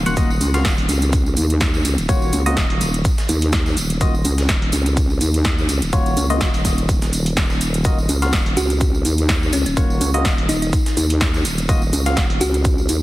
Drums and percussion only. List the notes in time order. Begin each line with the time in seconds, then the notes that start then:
0.06 closed hi-hat, tambourine
0.17 kick, closed hi-hat, tambourine, shaker
0.30 tambourine
0.41 open hi-hat, tambourine, shaker
0.54 snare, closed hi-hat, tambourine
0.65 kick, snare, closed hi-hat, tambourine, shaker
0.78 closed hi-hat
0.89 open hi-hat, tambourine, shaker
1.02 closed hi-hat, tambourine
1.12 kick, closed hi-hat, tambourine, shaker
1.26 tambourine
1.36 open hi-hat, tambourine, shaker
1.50 closed hi-hat, tambourine
1.60 kick, snare, closed hi-hat, tambourine, shaker
1.74 tambourine
1.85 open hi-hat, tambourine, shaker
1.98 closed hi-hat, tambourine
2.09 kick, closed hi-hat, tambourine, shaker
2.22 tambourine
2.33 open hi-hat, tambourine, shaker
2.46 open hi-hat, tambourine
2.57 kick, snare, closed hi-hat, tambourine, shaker
2.70 closed hi-hat
2.81 open hi-hat, tambourine, shaker
2.94 closed hi-hat, tambourine
3.05 kick, closed hi-hat, tambourine, shaker
3.18 snare, open hi-hat, tambourine
3.29 open hi-hat, tambourine, shaker
3.41 closed hi-hat, tambourine
3.52 kick, snare, closed hi-hat, tambourine, shaker
3.66 snare, tambourine
3.77 open hi-hat, tambourine, shaker
3.89 closed hi-hat, tambourine
4.01 kick, closed hi-hat, tambourine, shaker
4.14 tambourine
4.25 open hi-hat, tambourine, shaker
4.38 snare, closed hi-hat, tambourine
4.49 kick, snare, closed hi-hat, tambourine, shaker
4.62 closed hi-hat
4.72 open hi-hat, tambourine, shaker
4.86 closed hi-hat, tambourine
4.97 kick, closed hi-hat, tambourine, shaker
5.10 tambourine
5.21 open hi-hat, tambourine, shaker
5.34 closed hi-hat, tambourine
5.44 kick, snare, closed hi-hat, tambourine, shaker
5.58 tambourine
5.69 open hi-hat, tambourine, shaker
5.82 closed hi-hat, tambourine
5.93 kick, closed hi-hat, tambourine, shaker
6.06 closed hi-hat, tambourine
6.17 open hi-hat, tambourine, shaker
6.30 open hi-hat
6.41 kick, snare, closed hi-hat, tambourine, shaker
6.54 closed hi-hat, tambourine
6.65 kick, open hi-hat, tambourine, shaker
6.78 closed hi-hat, tambourine
6.89 kick, closed hi-hat, tambourine, shaker
7.01 snare, open hi-hat, tambourine
7.13 open hi-hat, tambourine, shaker
7.26 closed hi-hat, tambourine
7.37 kick, snare, closed hi-hat, tambourine, shaker
7.50 snare, tambourine
7.61 open hi-hat, tambourine, shaker
7.74 closed hi-hat, tambourine
7.84 kick, closed hi-hat, tambourine, shaker
7.98 tambourine
8.09 open hi-hat, tambourine, shaker
8.22 snare, closed hi-hat, tambourine
8.33 kick, snare, closed hi-hat, tambourine, shaker
8.46 closed hi-hat
8.57 open hi-hat, tambourine, shaker
8.70 closed hi-hat, tambourine
8.80 kick, closed hi-hat, tambourine, shaker
8.95 tambourine
9.05 open hi-hat, tambourine, shaker
9.18 closed hi-hat, tambourine
9.29 kick, snare, closed hi-hat, tambourine, shaker
9.43 tambourine
9.53 open hi-hat, tambourine, shaker
9.66 closed hi-hat, tambourine
9.77 kick, closed hi-hat, tambourine, shaker
9.90 tambourine
10.01 open hi-hat, tambourine, shaker
10.14 open hi-hat, tambourine
10.25 kick, snare, closed hi-hat, tambourine, shaker
10.38 closed hi-hat
10.49 open hi-hat, tambourine, shaker
10.62 closed hi-hat, tambourine
10.73 kick, closed hi-hat, tambourine, shaker
10.86 snare, open hi-hat, tambourine
10.97 open hi-hat, tambourine, shaker
11.10 closed hi-hat, tambourine
11.21 kick, snare, closed hi-hat, tambourine, shaker
11.34 snare, tambourine
11.45 open hi-hat, tambourine, shaker
11.58 closed hi-hat, tambourine
11.69 kick, closed hi-hat, tambourine, shaker
11.82 tambourine
11.93 open hi-hat, tambourine, shaker
12.06 snare, closed hi-hat, tambourine
12.17 kick, snare, closed hi-hat, tambourine, shaker
12.30 closed hi-hat
12.41 open hi-hat, tambourine, shaker
12.54 closed hi-hat, tambourine
12.64 kick, closed hi-hat, tambourine, shaker
12.78 tambourine
12.89 open hi-hat, tambourine, shaker